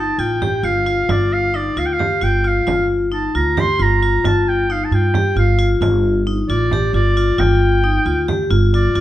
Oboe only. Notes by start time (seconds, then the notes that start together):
Already playing: A5
0.19 G5
0.64 F5
1.11 D5
1.33 F5
1.55 D5
1.79 F5
1.86 G5
1.93 F5
2.23 G5
2.47 F5
3.13 A5
3.36 A#5
3.60 C6
3.82 A#5
4.27 A5
4.48 G5
4.71 F5
4.84 A5
4.95 G5
5.38 F5
6.49 D5
6.94 D5
7.40 G5
8.75 D5